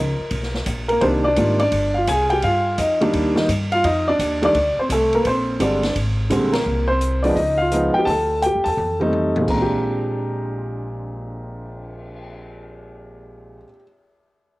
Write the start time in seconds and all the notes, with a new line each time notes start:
Already playing: C#2 A#4 A#5
0.19 muted upright bass stroke
0.31 B1, kick, ride
0.43 snare
0.54 snare
0.66 A#1, kick, hi-hat pedal, ride
0.88 A#3 A#4, ride
1.01 C2 D#3 G3 A#3 C4 D4 C5, kick, ride
1.24 D4 D5
1.36 G#1 D#3 G3 A#3 F4, kick, hi-hat pedal, ride
1.59 D4 D5, ride
1.72 G1, kick, ride
1.94 F4 F5
2.07 C2 G#5, kick, hi-hat pedal, ride
2.11 G#4
2.30 G4 G5, ride
2.42 G2 F5, kick, ride
2.47 F4
2.78 F2 D#4 D#5, kick, hi-hat pedal, ride
3.01 D#3 G3 A#3 D4, ride
3.13 D#2, kick, ride
3.35 D#3 G3 A#3 D#4, snare
3.48 G2, kick, hi-hat pedal, ride
3.72 F4 F5, ride
3.84 F2 D#4 D#5, kick, ride
4.08 D4 D5
4.19 D#2, kick, hi-hat pedal, ride
4.42 D#3 G3 A3 D4 D5, ride
4.54 D2, kick, ride
4.77 C5, muted upright bass stroke
4.81 C4
4.89 C2 A4, kick, hi-hat pedal, ride
4.93 A3
5.13 A#3 A#4, ride
5.21 B4
5.25 A#1 C4 C5, kick, ride
5.60 G1 D3 G3 G#3 C4 D5, kick, hi-hat pedal, ride
5.64 D4
5.83 snare, ride
5.95 G#1, kick, ride
6.30 A#1 D3 G3 G#3 C4, kick, hi-hat pedal, ride
6.53 A#3 A#4, snare, ride
6.66 C2
6.88 C4 C5
7.01 closed hi-hat
7.23 F3 G#3 B3 D4 D#4 D5, open hi-hat
7.36 C#2 D#4 D#5, kick, open hi-hat
7.57 F5
7.62 F4
7.71 F3 G#3 B3 D#4, closed hi-hat
7.94 G5, muted upright bass stroke
7.99 G4
8.05 D2 A5, kick, open hi-hat
8.10 A4
8.42 G4 G5, closed hi-hat
8.55 F2
8.64 E2 A5, open hi-hat
8.68 A4
8.77 F2, high tom
9.00 G3 A3 C4 D#4, high tom
9.13 high tom
9.36 A#2, high tom
9.43 G#3
9.48 A#1 C4 A#5, kick, crash
9.55 D4
9.62 G4
9.71 cymbal swell